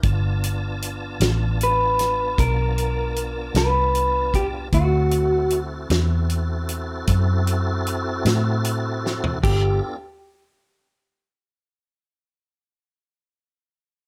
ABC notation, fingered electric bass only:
X:1
M:12/8
L:1/8
Q:3/8=51
K:Ddor
V:1 name="Fingered electric bass" clef=bass
G,,,3 A,,,3 B,,,3 C,,3 | D,,3 E,,3 ^F,,3 A,,3 | G,,, z8 z3 |]